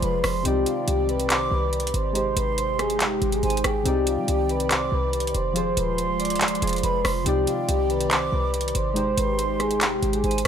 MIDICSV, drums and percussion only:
0, 0, Header, 1, 2, 480
1, 0, Start_track
1, 0, Key_signature, -3, "minor"
1, 0, Tempo, 425532
1, 509, Time_signature, 4, 2, 24, 8
1, 11818, End_track
2, 0, Start_track
2, 0, Title_t, "Drums"
2, 28, Note_on_c, 9, 42, 70
2, 141, Note_off_c, 9, 42, 0
2, 269, Note_on_c, 9, 37, 100
2, 269, Note_on_c, 9, 46, 73
2, 381, Note_off_c, 9, 37, 0
2, 381, Note_off_c, 9, 46, 0
2, 509, Note_on_c, 9, 42, 77
2, 621, Note_off_c, 9, 42, 0
2, 748, Note_on_c, 9, 42, 81
2, 861, Note_off_c, 9, 42, 0
2, 988, Note_on_c, 9, 42, 78
2, 1101, Note_off_c, 9, 42, 0
2, 1229, Note_on_c, 9, 42, 41
2, 1341, Note_off_c, 9, 42, 0
2, 1349, Note_on_c, 9, 42, 66
2, 1461, Note_off_c, 9, 42, 0
2, 1469, Note_on_c, 9, 39, 123
2, 1469, Note_on_c, 9, 42, 84
2, 1581, Note_off_c, 9, 42, 0
2, 1582, Note_off_c, 9, 39, 0
2, 1949, Note_on_c, 9, 42, 61
2, 2029, Note_off_c, 9, 42, 0
2, 2029, Note_on_c, 9, 42, 59
2, 2109, Note_off_c, 9, 42, 0
2, 2109, Note_on_c, 9, 42, 60
2, 2189, Note_off_c, 9, 42, 0
2, 2189, Note_on_c, 9, 42, 70
2, 2302, Note_off_c, 9, 42, 0
2, 2429, Note_on_c, 9, 42, 73
2, 2542, Note_off_c, 9, 42, 0
2, 2669, Note_on_c, 9, 42, 84
2, 2782, Note_off_c, 9, 42, 0
2, 2909, Note_on_c, 9, 42, 78
2, 3022, Note_off_c, 9, 42, 0
2, 3150, Note_on_c, 9, 37, 65
2, 3150, Note_on_c, 9, 42, 53
2, 3262, Note_off_c, 9, 37, 0
2, 3262, Note_off_c, 9, 42, 0
2, 3270, Note_on_c, 9, 42, 55
2, 3382, Note_off_c, 9, 42, 0
2, 3389, Note_on_c, 9, 39, 127
2, 3389, Note_on_c, 9, 42, 83
2, 3502, Note_off_c, 9, 39, 0
2, 3502, Note_off_c, 9, 42, 0
2, 3628, Note_on_c, 9, 42, 65
2, 3741, Note_off_c, 9, 42, 0
2, 3749, Note_on_c, 9, 42, 60
2, 3862, Note_off_c, 9, 42, 0
2, 3869, Note_on_c, 9, 42, 44
2, 3949, Note_off_c, 9, 42, 0
2, 3949, Note_on_c, 9, 42, 60
2, 4029, Note_off_c, 9, 42, 0
2, 4029, Note_on_c, 9, 42, 71
2, 4109, Note_off_c, 9, 42, 0
2, 4109, Note_on_c, 9, 37, 99
2, 4109, Note_on_c, 9, 42, 74
2, 4222, Note_off_c, 9, 37, 0
2, 4222, Note_off_c, 9, 42, 0
2, 4349, Note_on_c, 9, 42, 77
2, 4462, Note_off_c, 9, 42, 0
2, 4588, Note_on_c, 9, 42, 83
2, 4701, Note_off_c, 9, 42, 0
2, 4829, Note_on_c, 9, 42, 78
2, 4942, Note_off_c, 9, 42, 0
2, 5069, Note_on_c, 9, 42, 39
2, 5182, Note_off_c, 9, 42, 0
2, 5189, Note_on_c, 9, 42, 67
2, 5302, Note_off_c, 9, 42, 0
2, 5309, Note_on_c, 9, 42, 82
2, 5310, Note_on_c, 9, 39, 119
2, 5422, Note_off_c, 9, 42, 0
2, 5423, Note_off_c, 9, 39, 0
2, 5789, Note_on_c, 9, 42, 60
2, 5869, Note_off_c, 9, 42, 0
2, 5869, Note_on_c, 9, 42, 61
2, 5949, Note_off_c, 9, 42, 0
2, 5949, Note_on_c, 9, 42, 61
2, 6029, Note_off_c, 9, 42, 0
2, 6029, Note_on_c, 9, 42, 67
2, 6142, Note_off_c, 9, 42, 0
2, 6269, Note_on_c, 9, 42, 77
2, 6382, Note_off_c, 9, 42, 0
2, 6509, Note_on_c, 9, 42, 80
2, 6622, Note_off_c, 9, 42, 0
2, 6749, Note_on_c, 9, 42, 75
2, 6862, Note_off_c, 9, 42, 0
2, 6990, Note_on_c, 9, 42, 54
2, 7049, Note_off_c, 9, 42, 0
2, 7049, Note_on_c, 9, 42, 55
2, 7109, Note_off_c, 9, 42, 0
2, 7109, Note_on_c, 9, 42, 57
2, 7169, Note_off_c, 9, 42, 0
2, 7169, Note_on_c, 9, 42, 56
2, 7229, Note_off_c, 9, 42, 0
2, 7229, Note_on_c, 9, 39, 120
2, 7229, Note_on_c, 9, 42, 83
2, 7309, Note_off_c, 9, 42, 0
2, 7309, Note_on_c, 9, 42, 78
2, 7342, Note_off_c, 9, 39, 0
2, 7389, Note_off_c, 9, 42, 0
2, 7389, Note_on_c, 9, 42, 67
2, 7469, Note_off_c, 9, 42, 0
2, 7469, Note_on_c, 9, 42, 78
2, 7529, Note_off_c, 9, 42, 0
2, 7529, Note_on_c, 9, 42, 68
2, 7549, Note_off_c, 9, 42, 0
2, 7549, Note_on_c, 9, 42, 59
2, 7589, Note_off_c, 9, 42, 0
2, 7589, Note_on_c, 9, 42, 53
2, 7629, Note_off_c, 9, 42, 0
2, 7629, Note_on_c, 9, 42, 47
2, 7650, Note_off_c, 9, 42, 0
2, 7650, Note_on_c, 9, 42, 43
2, 7709, Note_off_c, 9, 42, 0
2, 7709, Note_on_c, 9, 42, 71
2, 7822, Note_off_c, 9, 42, 0
2, 7950, Note_on_c, 9, 37, 102
2, 7950, Note_on_c, 9, 46, 74
2, 8062, Note_off_c, 9, 37, 0
2, 8062, Note_off_c, 9, 46, 0
2, 8189, Note_on_c, 9, 42, 80
2, 8302, Note_off_c, 9, 42, 0
2, 8430, Note_on_c, 9, 42, 80
2, 8542, Note_off_c, 9, 42, 0
2, 8670, Note_on_c, 9, 42, 77
2, 8783, Note_off_c, 9, 42, 0
2, 8910, Note_on_c, 9, 42, 40
2, 9023, Note_off_c, 9, 42, 0
2, 9030, Note_on_c, 9, 42, 66
2, 9143, Note_off_c, 9, 42, 0
2, 9150, Note_on_c, 9, 42, 82
2, 9151, Note_on_c, 9, 39, 121
2, 9263, Note_off_c, 9, 39, 0
2, 9263, Note_off_c, 9, 42, 0
2, 9630, Note_on_c, 9, 42, 62
2, 9709, Note_off_c, 9, 42, 0
2, 9709, Note_on_c, 9, 42, 60
2, 9789, Note_off_c, 9, 42, 0
2, 9789, Note_on_c, 9, 42, 60
2, 9869, Note_off_c, 9, 42, 0
2, 9869, Note_on_c, 9, 42, 70
2, 9982, Note_off_c, 9, 42, 0
2, 10109, Note_on_c, 9, 42, 77
2, 10222, Note_off_c, 9, 42, 0
2, 10349, Note_on_c, 9, 42, 80
2, 10462, Note_off_c, 9, 42, 0
2, 10589, Note_on_c, 9, 42, 78
2, 10701, Note_off_c, 9, 42, 0
2, 10828, Note_on_c, 9, 37, 63
2, 10828, Note_on_c, 9, 42, 56
2, 10940, Note_off_c, 9, 37, 0
2, 10940, Note_off_c, 9, 42, 0
2, 10949, Note_on_c, 9, 42, 55
2, 11062, Note_off_c, 9, 42, 0
2, 11068, Note_on_c, 9, 42, 82
2, 11069, Note_on_c, 9, 39, 123
2, 11181, Note_off_c, 9, 42, 0
2, 11182, Note_off_c, 9, 39, 0
2, 11308, Note_on_c, 9, 42, 65
2, 11421, Note_off_c, 9, 42, 0
2, 11429, Note_on_c, 9, 42, 59
2, 11541, Note_off_c, 9, 42, 0
2, 11549, Note_on_c, 9, 42, 43
2, 11629, Note_off_c, 9, 42, 0
2, 11629, Note_on_c, 9, 42, 58
2, 11709, Note_off_c, 9, 42, 0
2, 11709, Note_on_c, 9, 42, 72
2, 11818, Note_off_c, 9, 42, 0
2, 11818, End_track
0, 0, End_of_file